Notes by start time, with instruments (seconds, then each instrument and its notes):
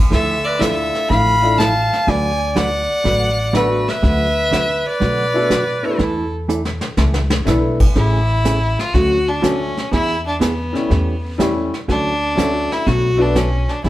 0.10 upright bass D2, hollow-body jazz guitar D3 F3 A3 E4, clarinet A4, fiddle E5, brush sweep, kick, snare
0.44 clarinet B4, fiddle D5
0.59 hollow-body jazz guitar D3 F3 A3 E4, upright piano A3 D4 E4 F4 A4, clarinet A4, fiddle E5, kick, snare, hi-hat pedal
0.95 snare
1.09 upright bass A1, hollow-body jazz guitar D3 F3 A3 E4, clarinet F5, fiddle B5, brush sweep, kick, snare
1.42 upright piano A3 D4 E4 F4 A4
1.58 hollow-body jazz guitar D3 F3 A3 E4, clarinet F5, fiddle A5, kick, snare, hi-hat pedal
1.93 snare
2.07 upright bass D2, hollow-body jazz guitar D3 F#3 A3 D4 F#4 B4, clarinet D5, fiddle G#5, brush sweep, kick, snare
2.56 hollow-body jazz guitar D3 F#3 A3 D4 F#4 B4, clarinet D5, fiddle F#5, kick, snare, hi-hat pedal
3.04 upright bass A1, hollow-body jazz guitar D3 F#3 A3 D4 F#4 B4, brush sweep, kick, snare
3.53 hollow-body jazz guitar D3 F#3 A3 D4 F#4 B4, upright piano A3 B3 D4 F#4 A4, clarinet F#4, fiddle B4, kick, snare, hi-hat pedal
3.88 clarinet B4, fiddle E5, snare
4.02 upright bass D2, hollow-body jazz guitar D3 F#3 A3 D4 F#4 B4, brush sweep, kick, snare
4.51 hollow-body jazz guitar D3 F#3 A3 D4 F#4 B4, kick, snare, hi-hat pedal
4.86 clarinet B4, fiddle D5
5.00 upright bass B2, hollow-body jazz guitar D3 F#3 A3 D4 F#4 B4, brush sweep, kick, snare
5.34 upright piano A3 B3 D4 F#4 A4
5.50 hollow-body jazz guitar D3 F#3 A3 D4 F#4 B4, kick, snare, hi-hat pedal
5.83 upright piano A3 B3 D4 E4 A4, clarinet E4, fiddle A4
5.98 upright bass E2, hollow-body jazz guitar E3 A3 D4 E4 A4, brush sweep, kick, snare
6.48 hollow-body jazz guitar E3 A3 D4 E4 A4, hi-hat pedal
6.65 snare
6.81 snare
6.97 upright bass C#2, hollow-body jazz guitar E3 A3 D4 E4 A4, snare
7.14 snare
7.30 snare
7.45 upright bass B1, hollow-body jazz guitar E3 A3 D4 E4 A4, upright piano A3 B3 D4 E4 A4, snare, hi-hat pedal
7.80 kick, crash
7.95 upright bass A1, hollow-body jazz guitar C#3 E3 A3 C#4 G#4, fiddle E4, brush sweep, kick, snare
8.45 hollow-body jazz guitar C#3 E3 A3 C#4 G#4, kick, snare, hi-hat pedal
8.79 fiddle F4, snare
8.94 upright bass D2, hollow-body jazz guitar D3 F#3 A3 C#4 F#4, fiddle F#4, brush sweep, kick, snare
9.28 fiddle D4
9.41 hollow-body jazz guitar D3 F#3 A3 C#4 F#4, upright piano A3 C#4 D4 F#4, fiddle C#4, kick, snare, hi-hat pedal
9.77 snare
9.92 upright bass E2, hollow-body jazz guitar E3 B3 D4 G#4, fiddle E4, brush sweep, kick, snare
10.26 fiddle D4
10.40 hollow-body jazz guitar E3 B3 D4 G#4, fiddle B3, kick, snare, hi-hat pedal
10.72 upright piano G3 A3 C#4 E4, snare
10.90 upright bass E2, hollow-body jazz guitar E3 A3 C#4 G4, brush sweep, kick, snare
11.38 hollow-body jazz guitar E3 A3 C#4 G4, upright piano G3 A3 C#4 E4, kick, snare, hi-hat pedal
11.74 snare
11.88 upright bass D2, hollow-body jazz guitar D3 F#3 A3 C#4 F#4, fiddle D4, brush sweep, kick, snare
12.35 hollow-body jazz guitar D3 F#3 A3 C#4 F#4, upright piano A3 C#4 D4 F#4, kick, snare, hi-hat pedal
12.72 fiddle E4, snare
12.86 upright bass B1, hollow-body jazz guitar B2 F#3 A3 D4 F#4, fiddle F#4, brush sweep, kick, snare
13.17 upright piano A3 B3 D4 F#4
13.22 fiddle D4
13.35 hollow-body jazz guitar B2 F#3 A3 D4 F#4, fiddle C#4, kick, snare, hi-hat pedal
13.69 fiddle D4, snare
13.84 upright bass E2, hollow-body jazz guitar E3 B3 D4 G#4, fiddle E4, brush sweep, kick, snare